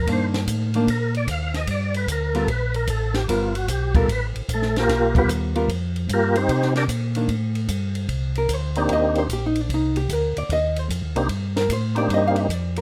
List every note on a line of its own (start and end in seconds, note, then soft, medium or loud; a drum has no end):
0.07 0.47 G2 medium
0.07 0.69 D#3 medium
0.07 0.69 A#3 medium
0.07 0.70 D4 medium
0.07 kick soft
0.07 ride medium
0.12 0.27 C5 medium
0.34 snare medium
0.34 ride soft
0.47 0.87 A2 loud
0.47 kick soft
0.47 hi-hat pedal medium
0.47 ride medium
0.74 0.87 D#3 medium
0.74 0.88 A#3 medium
0.74 0.88 D4 medium
0.74 ride soft
0.87 1.27 A#2 medium
0.87 1.15 A#4 medium
0.87 kick soft
0.87 ride medium
1.14 1.29 D5 medium
1.14 ride soft
1.28 1.67 D#2 medium
1.28 1.55 F5 medium
1.28 kick soft
1.28 hi-hat pedal medium
1.28 ride medium
1.54 1.68 D#5 medium
1.54 snare soft
1.54 ride medium
1.67 2.07 G2 medium
1.67 1.95 D5 medium
1.67 kick soft
1.67 ride medium
1.94 2.09 B4 loud
1.94 ride medium
2.07 2.47 D2 medium
2.07 kick soft
2.07 hi-hat pedal medium
2.07 ride medium
2.12 2.36 A#4 medium
2.34 2.47 G3 medium
2.34 2.47 B3 medium
2.34 2.48 F4 medium
2.34 2.49 A4 medium
2.34 2.48 A#4 medium
2.34 ride soft
2.48 2.87 A#1 medium
2.48 2.75 B4 medium
2.48 kick soft
2.48 ride medium
2.74 2.89 A#4 loud
2.74 ride soft
2.87 3.27 A1 medium
2.87 3.15 A4 medium
2.87 kick soft
2.87 hi-hat pedal soft
2.87 ride medium
3.14 3.28 G4 loud
3.14 snare soft
3.14 ride soft
3.28 3.67 G1 medium
3.28 3.52 G3 medium
3.28 3.53 B3 medium
3.28 3.53 F4 medium
3.28 3.55 F4 medium
3.28 3.53 A#4 medium
3.28 kick soft
3.28 ride medium
3.55 3.69 F#4 medium
3.55 ride medium
3.68 4.07 B1 medium
3.68 3.95 G4 medium
3.68 kick soft
3.68 hi-hat pedal medium
3.68 ride medium
3.95 4.07 G3 medium
3.95 4.07 B3 medium
3.95 4.08 F4 medium
3.95 4.09 A4 medium
3.95 4.08 A#4 medium
3.95 kick medium
3.95 ride soft
4.08 4.33 A1 medium
4.08 4.27 B4 medium
4.08 kick soft
4.08 ride medium
4.35 4.42 A1 soft
4.35 ride soft
4.49 4.88 A#1 medium
4.49 kick soft
4.49 hi-hat pedal medium
4.49 ride medium
4.54 4.77 A3 medium
4.54 4.77 A4 medium
4.62 snare soft
4.76 5.15 A#3 medium
4.76 5.15 F4 medium
4.76 5.15 G4 medium
4.76 5.14 A#4 loud
4.76 snare soft
4.76 ride medium
4.89 5.28 B1 medium
4.89 kick soft
4.89 snare soft
4.89 ride medium
5.15 5.53 G3 medium
5.15 5.53 B3 medium
5.15 5.30 B3 medium
5.15 5.53 F4 medium
5.15 5.30 F4 medium
5.15 5.30 G4 medium
5.15 5.53 A#4 medium
5.15 5.30 B4 loud
5.15 kick medium
5.15 ride soft
5.28 5.68 D#2 loud
5.28 kick soft
5.28 hi-hat pedal medium
5.28 ride medium
5.55 5.68 G3 medium
5.55 5.68 B3 medium
5.55 5.68 F4 medium
5.55 5.68 A#4 medium
5.55 ride soft
5.68 6.07 F2 medium
5.68 kick soft
5.68 ride medium
5.96 ride soft
6.09 6.48 G2 medium
6.09 kick soft
6.09 hi-hat pedal medium
6.09 ride medium
6.13 6.37 A#3 medium
6.13 6.37 F4 medium
6.13 6.36 G4 medium
6.13 6.37 A#4 medium
6.36 6.74 C4 medium
6.36 6.74 D#4 medium
6.36 6.74 G4 medium
6.36 6.73 C5 loud
6.36 ride medium
6.48 6.87 C3 medium
6.48 kick soft
6.48 ride medium
6.62 snare soft
6.75 6.85 D4 medium
6.75 6.85 G4 medium
6.75 6.85 A#4 medium
6.75 6.85 D5 loud
6.75 snare soft
6.75 ride soft
6.88 7.27 A#2 medium
6.88 kick soft
6.88 hi-hat pedal medium
6.88 ride medium
7.15 7.28 D#3 medium
7.15 7.28 A#3 medium
7.15 7.28 D4 medium
7.15 ride medium
7.28 7.68 A2 medium
7.28 kick soft
7.28 ride medium
7.55 ride soft
7.68 8.08 G2 medium
7.68 kick soft
7.68 hi-hat pedal medium
7.68 ride medium
7.95 ride medium
8.08 8.48 C2 medium
8.08 kick soft
8.08 ride medium
8.35 8.53 A#4 medium
8.35 ride soft
8.49 8.88 D2 medium
8.49 kick soft
8.49 hi-hat pedal medium
8.49 ride medium
8.53 8.78 C5 medium
8.75 9.27 A#3 medium
8.75 9.27 C4 medium
8.75 9.28 D4 medium
8.75 9.27 D#4 medium
8.75 9.28 G4 medium
8.75 8.90 D5 medium
8.75 ride soft
8.89 9.28 D#2 medium
8.89 kick soft
8.89 ride medium
8.93 9.17 D#5 loud
9.15 9.30 C5 medium
9.15 ride soft
9.29 9.68 A#1 medium
9.29 kick soft
9.29 hi-hat pedal medium
9.29 ride medium
9.33 9.44 G4 medium
9.46 9.61 D#4 medium
9.55 ride medium
9.61 9.71 D4 medium
9.69 10.08 C2 medium
9.69 kick soft
9.69 ride medium
9.74 9.97 D#4 medium
9.96 10.13 G4 medium
9.96 ride soft
10.09 10.34 D2 medium
10.09 10.37 A#4 medium
10.09 kick soft
10.09 hi-hat pedal medium
10.09 ride medium
10.37 10.43 D2 soft
10.37 10.50 D5 medium
10.37 ride soft
10.49 10.88 D#2 medium
10.49 10.79 D#5 loud
10.49 kick soft
10.49 ride medium
10.76 10.86 C5 loud
10.76 ride soft
10.89 11.02 F2 medium
10.89 kick soft
10.89 hi-hat pedal medium
10.89 ride medium
11.02 11.16 D#2 medium
11.16 11.28 C2 medium
11.16 11.28 A#3 medium
11.16 11.29 C4 medium
11.16 11.29 D4 medium
11.16 11.29 D#4 medium
11.16 11.29 G4 medium
11.16 ride medium
11.29 11.68 G2 medium
11.29 kick soft
11.29 ride medium
11.56 11.70 A#4 medium
11.56 snare medium
11.56 ride soft
11.69 12.08 A2 medium
11.69 11.97 C5 medium
11.69 kick soft
11.69 hi-hat pedal medium
11.69 ride medium
11.95 12.47 A#3 medium
11.95 12.47 C4 medium
11.95 12.47 D4 medium
11.95 12.47 D#4 medium
11.95 12.48 G4 medium
11.95 12.10 D5 medium
11.95 ride soft
12.09 12.48 G2 medium
12.09 kick soft
12.09 ride medium
12.14 12.25 D#5 medium
12.28 12.40 F5 loud
12.36 ride soft
12.40 12.53 D#5 medium
12.49 12.81 F2 medium
12.49 kick soft
12.49 hi-hat pedal medium
12.49 ride medium
12.53 12.77 D5 medium
12.76 12.81 A#4 medium
12.76 ride medium